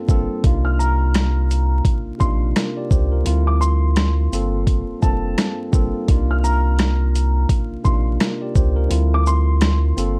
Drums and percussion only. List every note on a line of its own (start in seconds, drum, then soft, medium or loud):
0.09 kick loud
0.09 shaker medium
0.44 kick loud
0.44 closed hi-hat loud
0.80 shaker medium
1.14 cross-stick medium
1.14 snare loud
1.14 closed hi-hat medium
1.51 closed hi-hat medium
1.51 shaker medium
1.85 kick loud
1.85 closed hi-hat medium
2.21 kick medium
2.21 shaker soft
2.56 cross-stick medium
2.56 snare loud
2.56 closed hi-hat medium
2.91 kick loud
2.91 shaker medium
3.26 closed hi-hat loud
3.62 shaker medium
3.96 cross-stick medium
3.96 snare loud
3.96 closed hi-hat medium
4.33 closed hi-hat medium
4.33 shaker medium
4.67 kick loud
4.67 closed hi-hat loud
5.03 kick medium
5.03 shaker medium
5.38 cross-stick medium
5.38 snare loud
5.38 closed hi-hat medium
5.73 kick loud
5.73 shaker medium
6.08 kick loud
6.08 closed hi-hat loud
6.44 shaker medium
6.79 cross-stick medium
6.79 snare loud
6.79 closed hi-hat medium
7.16 closed hi-hat medium
7.16 shaker medium
7.49 kick loud
7.49 closed hi-hat loud
7.85 kick medium
7.85 shaker medium
8.20 cross-stick medium
8.20 snare loud
8.20 closed hi-hat medium
8.56 kick loud
8.56 shaker medium
8.91 closed hi-hat loud
9.27 shaker medium
9.61 cross-stick medium
9.61 snare loud
9.61 closed hi-hat medium
9.98 closed hi-hat medium
9.98 shaker medium